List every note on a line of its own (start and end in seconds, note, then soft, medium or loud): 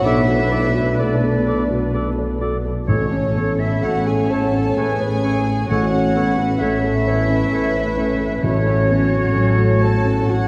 0.03 2.85 B1 soft
0.03 2.65 B1 medium
0.03 2.65 B2 medium
0.03 2.57 A3 medium
0.03 2.58 D4 medium
0.03 0.97 E4 medium
0.03 0.22 A4 medium
0.03 2.38 B4 medium
0.03 0.21 D5 medium
0.03 0.95 E5 medium
0.03 0.97 E5 medium
0.28 0.66 F#4 soft
0.51 0.75 E4 soft
0.51 0.68 A4 soft
0.51 0.67 D5 soft
0.75 1.13 F#4 soft
0.98 1.38 A3 soft
0.98 1.94 D4 medium
0.98 1.16 A4 soft
0.98 1.94 D5 medium
0.98 1.15 D5 soft
0.98 1.92 D5 soft
1.23 1.61 A4 soft
1.47 1.63 A4 soft
1.47 1.85 D5 soft
1.47 1.63 D5 soft
1.70 2.09 F#4 soft
1.94 2.32 A4 soft
1.94 2.11 A4 soft
1.94 2.10 D5 soft
2.18 2.56 D5 soft
2.41 2.80 F#4 soft
2.41 2.58 A4 soft
2.41 2.57 D5 soft
2.65 2.89 A4 soft
2.88 5.65 A1 soft
2.88 3.73 A1 medium
2.88 4.27 A2 medium
2.88 3.73 A2 medium
2.88 5.66 A3 medium
2.88 3.56 C#4 medium
2.88 5.66 C#4 medium
2.88 3.05 A4 soft
2.88 3.80 A4 medium
2.88 3.04 C#5 medium
2.88 3.61 C#5 medium
2.88 3.56 C#5 medium
3.12 3.51 C#4 soft
3.36 3.60 B3 soft
3.36 3.53 A4 soft
3.36 3.53 C#5 soft
3.59 3.97 C#4 soft
3.59 3.83 E4 medium
3.59 3.85 E5 medium
3.59 3.84 E5 medium
3.82 4.66 A1 medium
3.82 4.67 A2 medium
3.82 4.21 A3 soft
3.82 4.08 F#4 medium
3.82 4.00 A4 soft
3.82 4.78 C#5 medium
3.82 4.00 C#5 soft
3.82 4.09 F#5 medium
3.82 4.07 F#5 medium
4.07 4.31 G#4 medium
4.07 4.45 A4 soft
4.07 4.32 G#5 medium
4.07 4.31 G#5 medium
4.30 4.77 A4 medium
4.30 4.48 A4 soft
4.30 4.68 C#5 soft
4.30 4.48 C#5 soft
4.30 4.75 A5 medium
4.30 4.78 A5 medium
4.53 4.91 C#4 soft
4.76 5.59 A1 medium
4.76 5.60 A2 medium
4.76 5.15 A3 soft
4.76 5.70 G#4 medium
4.76 4.96 A4 soft
4.76 5.24 B4 medium
4.76 4.94 C#5 soft
4.76 5.71 G#5 medium
4.76 5.70 G#5 medium
5.00 5.38 C#5 soft
5.24 5.70 A3 soft
5.24 5.61 C#4 soft
5.24 5.41 A4 soft
5.24 5.40 C#5 soft
5.47 5.84 A4 soft
5.69 6.50 A1 medium
5.69 8.39 A1 soft
5.69 6.50 A2 medium
5.69 8.39 A3 medium
5.69 8.39 C#4 medium
5.69 6.58 F#4 medium
5.69 5.87 A4 medium
5.69 5.86 C#5 medium
5.69 6.15 C#5 medium
5.69 6.61 F#5 medium
5.69 6.59 F#5 medium
5.93 6.29 C#4 soft
6.15 6.38 B3 soft
6.15 6.32 A4 soft
6.15 6.60 B4 medium
6.15 6.33 C#5 soft
6.38 6.74 C#4 soft
6.60 7.41 A1 medium
6.60 7.41 A2 medium
6.60 6.97 A3 soft
6.60 8.42 E4 medium
6.60 6.77 A4 soft
6.60 7.05 C#5 medium
6.60 6.77 C#5 soft
6.60 8.44 E5 medium
6.60 8.43 E5 medium
6.83 7.20 A4 soft
7.05 7.23 A4 soft
7.05 8.42 B4 medium
7.05 7.42 C#5 soft
7.05 7.24 C#5 soft
7.29 7.65 C#4 soft
7.51 8.32 A1 medium
7.51 8.32 A2 medium
7.51 7.88 A4 soft
7.51 7.69 A4 soft
7.51 7.70 C#5 soft
7.75 8.11 C#5 soft
7.97 8.33 C#4 soft
7.97 8.14 A4 soft
7.97 8.14 C#5 soft
8.20 8.43 A4 soft
8.42 9.24 A1 medium
8.42 10.48 A1 soft
8.42 9.24 A2 medium
8.42 9.77 A2 medium
8.42 10.13 F#3 medium
8.42 9.81 C#4 medium
8.42 10.13 C#4 medium
8.42 10.25 F#4 medium
8.42 8.89 A4 medium
8.42 10.24 C#5 medium
8.42 9.51 C#5 medium
8.42 9.78 C#5 medium
8.67 9.03 C#4 soft
8.89 9.12 B3 soft
8.89 9.35 F#4 medium
9.12 9.49 C#4 soft
9.34 10.17 A1 medium
9.34 10.17 A2 medium
9.34 9.72 F#3 soft
9.34 9.80 A4 medium
9.58 9.95 F#4 soft
9.81 10.48 F#4 medium
9.81 10.29 A4 medium
9.81 10.19 C#5 soft
9.81 10.31 A5 medium
9.81 10.29 A5 medium
10.05 10.43 C#4 soft
10.28 10.48 A1 medium
10.28 10.48 A2 medium
10.28 10.48 F#3 soft
10.28 10.48 C#4 soft
10.28 10.48 F#4 medium
10.28 10.48 F#4 soft
10.28 10.48 C#5 medium
10.28 10.48 F#5 medium